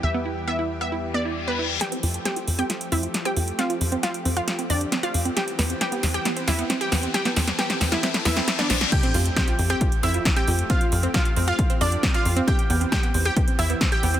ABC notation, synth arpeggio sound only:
X:1
M:4/4
L:1/16
Q:1/4=135
K:Flyd
V:1 name="Synth arpeggio sound"
z B, E z B, E z B, E z B, E z B, E z | z C F z C F z C F z C F z C F z | C F z C F z C F z C F z C F z C | C z B, C z B, C z B, C z B, C z B, C |
z B, C z B, C z B, C z B, C z B, C z | z C F z C F z C F z C F z C F z | C F z C F z C F z C F z C F z C | C z B, C z B, C z B, C z B, C z B, C |]